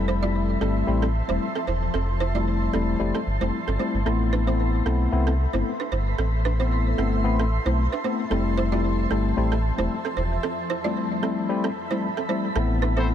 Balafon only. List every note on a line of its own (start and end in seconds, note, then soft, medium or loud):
0.08 0.17 E4 medium
0.08 0.16 C5 medium
0.23 0.30 F4 medium
0.23 0.29 D5 medium
0.61 0.70 C4 medium
0.61 0.69 A4 medium
1.02 1.10 C4 medium
1.02 1.09 A4 medium
1.29 1.36 E4 medium
1.29 1.35 C5 medium
1.55 1.63 C4 medium
1.55 1.62 A4 medium
1.67 1.76 E4 medium
1.67 1.75 C5 medium
1.94 2.03 C4 medium
1.94 2.02 A4 medium
2.20 2.29 E4 medium
2.20 2.28 C5 medium
2.35 2.42 F4 medium
2.35 2.42 D5 medium
2.73 2.82 C4 medium
2.73 2.81 A4 medium
3.15 3.22 C4 medium
3.15 3.21 A4 medium
3.41 3.48 E4 medium
3.41 3.48 C5 medium
3.68 3.75 C4 medium
3.68 3.74 A4 medium
3.80 3.88 E4 medium
3.80 3.88 C5 medium
4.06 4.15 C4 medium
4.06 4.14 A4 medium
4.33 4.41 D4 medium
4.33 4.41 B4 medium
4.47 4.55 E4 medium
4.47 4.54 C5 medium
4.86 4.95 C4 medium
4.86 4.94 A4 medium
5.27 5.34 C4 medium
5.27 5.34 A4 medium
5.53 5.61 E4 medium
5.53 5.60 C5 medium
5.80 5.87 D4 medium
5.80 5.87 B4 medium
5.92 6.01 E4 medium
5.92 6.00 C5 medium
6.18 6.27 C4 medium
6.18 6.26 A4 medium
6.45 6.54 D4 medium
6.45 6.53 B4 medium
6.60 6.67 E4 medium
6.60 6.66 C5 medium
6.98 7.07 C4 medium
6.98 7.06 A4 medium
7.40 7.47 C4 medium
7.40 7.46 A4 medium
7.66 7.73 E4 medium
7.66 7.73 C5 medium
7.92 8.00 D4 medium
7.92 7.99 B4 medium
8.04 8.13 E4 medium
8.04 8.12 C5 medium
8.31 8.40 C4 medium
8.31 8.39 A4 medium
8.58 8.66 E4 medium
8.58 8.66 C5 medium
8.72 8.79 F4 medium
8.72 8.79 D5 medium
9.11 9.19 C4 medium
9.11 9.19 A4 medium
9.52 9.59 C4 medium
9.52 9.59 A4 medium
9.79 9.86 E4 medium
9.79 9.85 C5 medium
10.05 10.12 C4 medium
10.05 10.12 A4 medium
10.17 10.26 E4 medium
10.17 10.25 C5 medium
10.43 10.52 C4 medium
10.43 10.51 A4 medium
10.70 10.79 E4 medium
10.70 10.78 C5 medium
10.84 10.92 F4 medium
10.84 10.91 D5 medium
11.23 11.32 C4 medium
11.23 11.31 A4 medium
11.64 11.71 C4 medium
11.64 11.71 A4 medium
11.91 11.98 E4 medium
11.91 11.97 C5 medium
12.17 12.24 C4 medium
12.17 12.24 A4 medium
12.29 12.38 E4 medium
12.29 12.37 C5 medium
12.56 12.64 C4 medium
12.56 12.64 A4 medium
12.82 12.91 D4 medium
12.82 12.90 B4 medium
12.97 13.04 E4 medium
12.97 13.04 C5 medium